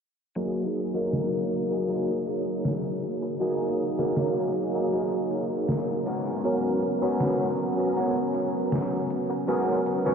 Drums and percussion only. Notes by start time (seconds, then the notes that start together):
0.37 closed hi-hat
0.75 closed hi-hat
0.95 closed hi-hat
1.13 snare, closed hi-hat
1.51 closed hi-hat
1.89 closed hi-hat
2.27 closed hi-hat
2.65 snare, closed hi-hat
3.03 closed hi-hat
3.41 closed hi-hat
3.79 closed hi-hat
3.99 snare, closed hi-hat
4.17 snare, closed hi-hat
4.55 closed hi-hat
4.93 closed hi-hat
5.31 closed hi-hat
5.69 snare, closed hi-hat
6.07 closed hi-hat
6.45 closed hi-hat
6.83 closed hi-hat
7.02 closed hi-hat
7.20 snare, closed hi-hat
7.58 closed hi-hat
7.96 closed hi-hat
8.34 closed hi-hat
8.72 snare, closed hi-hat
9.10 closed hi-hat
9.48 closed hi-hat
9.86 closed hi-hat
10.06 snare, closed hi-hat